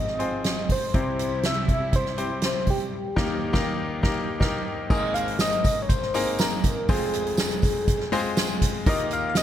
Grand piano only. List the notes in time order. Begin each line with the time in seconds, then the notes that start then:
Already playing: G#1 G#2 C4 F4 G#4 C5
0.19 C4 F4 G#4 C5
0.94 C2 C3 C4 E4 G4 C5
2.17 C4 E4 G4 C5
3.16 D#2 D#3 A#3 D#4 G4 A#4
3.53 D#2 D#3 A#3 D#4 G4 A#4
4.03 A#3 D#4 G4 A#4
4.40 A#3 D#4 G4 A#4
4.90 G#1 G#2 A#3 C4 D#4 G#4 A#4
6.14 A#3 C4 D#4 G#4 A#4
6.89 F1 F2 G#3 C4 F4 G#4 C5
8.12 G#3 C4 F4 G#4 C5
8.87 D#2 D#3 A#3 D#4 F4 G4 A#4